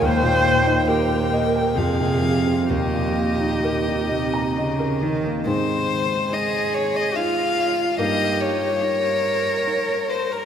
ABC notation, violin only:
X:1
M:3/4
L:1/16
Q:1/4=70
K:Ab
V:1 name="Violin"
g4 g4 f4 | e8- e3 z | c4 e2 d e f4 | e2 d8 c B |]